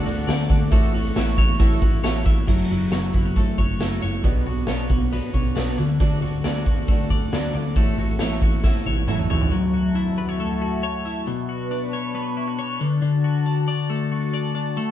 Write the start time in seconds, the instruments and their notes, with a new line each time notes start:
Already playing: clean electric guitar D3 A3 D4 D5, analog synth pad A4 F#5 D6
0.05 picked electric bass D2, twelve-string acoustic guitar A3 D4 F#4 D5, snare, hi-hat pedal, open hi-hat, tambourine
0.27 picked electric bass D2, twelve-string acoustic guitar A3 D4 F#4 D5, snare, hi-hat pedal, open hi-hat, tambourine
0.49 picked electric bass D2, twelve-string acoustic guitar A3 D4 F#4 D5, kick, hi-hat pedal, open hi-hat, tambourine
0.70 picked electric bass A1, twelve-string acoustic guitar A3 E4 F#4 C#5, analog synth pad C#6, kick, hi-hat pedal, open hi-hat, tambourine
0.92 twelve-string acoustic guitar E4 F#4 C#5, hi-hat pedal, open hi-hat, tambourine
1.14 picked electric bass A1, twelve-string acoustic guitar A3 E4 F#4 C#5, snare, hi-hat pedal, open hi-hat, tambourine
1.36 picked electric bass A1, twelve-string acoustic guitar E4 F#4 C#5, kick, hi-hat pedal, open hi-hat
1.58 picked electric bass A1, twelve-string acoustic guitar A3 E4 F#4 C#5, kick, hi-hat pedal, open hi-hat, tambourine
1.82 picked electric bass A1, twelve-string acoustic guitar E4 F#4 C#5, kick, hi-hat pedal, open hi-hat, tambourine
2.03 picked electric bass A1, twelve-string acoustic guitar A3 E4 F#4 C#5, snare, hi-hat pedal, open hi-hat, tambourine
2.25 picked electric bass A1, twelve-string acoustic guitar E4 F#4 C#5, kick, hi-hat pedal, open hi-hat, tambourine
2.47 picked electric bass F#1, twelve-string acoustic guitar F#3 A3 E4 F#4 C#5, kick, crash
2.69 picked electric bass F#1, twelve-string acoustic guitar E4 F#4 C#5, closed hi-hat
2.91 picked electric bass F#1, twelve-string acoustic guitar F#3 A3 E4 F#4 C#5, snare, closed hi-hat
3.13 picked electric bass F#1, twelve-string acoustic guitar E4 F#4 C#5, kick, closed hi-hat
3.26 clean electric guitar F#4
3.36 twelve-string acoustic guitar A3 E4 F#4 C#5, kick, closed hi-hat
3.57 picked electric bass F#1, twelve-string acoustic guitar E4 F#4 C#5, kick, closed hi-hat
3.79 picked electric bass F#1, twelve-string acoustic guitar F#3 A3 E4 F#4 C#5, snare, closed hi-hat
4.02 picked electric bass F#1, twelve-string acoustic guitar E4 F#4 C#5, closed hi-hat
4.23 picked electric bass B1, twelve-string acoustic guitar B2 F#3 B3 D4 F#4 C#5, kick, closed hi-hat
4.45 picked electric bass B1, twelve-string acoustic guitar B3 D4 F#4 C#5, closed hi-hat
4.67 picked electric bass B1, twelve-string acoustic guitar B2 F#3 B3 D4 F#4 C#5, snare, closed hi-hat
4.89 picked electric bass B1, twelve-string acoustic guitar B3 D4 F#4 C#5, kick, closed hi-hat
5.11 twelve-string acoustic guitar B3 D4 F#4 C#5, closed hi-hat
5.33 picked electric bass B1, twelve-string acoustic guitar B3 D4 F#4 C#5, kick, closed hi-hat
5.55 picked electric bass B1, twelve-string acoustic guitar B2 F#3 B3 D4 F#4 C#5, snare, closed hi-hat
5.77 picked electric bass D2, clean electric guitar D3, twelve-string acoustic guitar A3 D4 F#4 D5, closed hi-hat
5.99 twelve-string acoustic guitar D3 F#3 A3 D4 F#4 D5, kick, closed hi-hat
6.21 picked electric bass D2, twelve-string acoustic guitar A3 D4 F#4 D5, closed hi-hat
6.44 picked electric bass D2, twelve-string acoustic guitar D3 F#3 A3 D4 F#4 D5, snare, closed hi-hat
6.66 picked electric bass D2, twelve-string acoustic guitar A3 D4 F#4 D5, kick, closed hi-hat
6.88 twelve-string acoustic guitar A3 D4 F#4 D5, kick, closed hi-hat
7.10 picked electric bass D2, twelve-string acoustic guitar A3 D4 F#4 D5, kick, closed hi-hat
7.32 picked electric bass D2, twelve-string acoustic guitar D3 F#3 A3 D4 F#4 D5, snare, closed hi-hat
7.53 picked electric bass D2, twelve-string acoustic guitar A3 D4 F#4 D5, closed hi-hat
7.75 picked electric bass A1, twelve-string acoustic guitar A3 E4 F#4 C#5, kick, closed hi-hat
7.98 picked electric bass A1, twelve-string acoustic guitar E4 F#4 C#5, closed hi-hat
8.19 picked electric bass A1, twelve-string acoustic guitar A3 E4 F#4 C#5, snare, closed hi-hat
8.41 picked electric bass A1, twelve-string acoustic guitar E4 F#4 C#5, kick, closed hi-hat
8.63 twelve-string acoustic guitar A3 E4 F#4 C#5, kick, snare
8.86 picked electric bass A1, twelve-string acoustic guitar E4 F#4 C#5, high tom
9.08 picked electric bass A1, twelve-string acoustic guitar A3 E4 F#4 C#5, mid tom
9.19 mid tom
9.30 picked electric bass A1, twelve-string acoustic guitar E4 F#4 C#5, floor tom
9.41 floor tom
9.51 clean electric guitar F#3, analog synth pad F#4 E5 A5
9.74 clean electric guitar F#4
9.95 clean electric guitar E4
10.18 clean electric guitar B4
10.29 clean electric guitar C#5
10.40 clean electric guitar A3
10.62 clean electric guitar F#4
10.83 clean electric guitar C#5
11.05 clean electric guitar E4
11.27 clean electric guitar B2, analog synth pad D4 B4 C#6
11.49 clean electric guitar F#4
11.71 clean electric guitar D4
11.93 clean electric guitar C#5
12.15 clean electric guitar B3
12.37 clean electric guitar E4
12.48 clean electric guitar F#4
12.59 clean electric guitar C#5
12.80 clean electric guitar D3, analog synth pad F#4 A5
13.02 clean electric guitar D3
13.24 clean electric guitar F#4
13.46 clean electric guitar D4
13.68 clean electric guitar D5
13.90 clean electric guitar A3
14.12 clean electric guitar F#4
14.34 clean electric guitar D5
14.55 clean electric guitar D4
14.77 clean electric guitar A3, analog synth pad C#5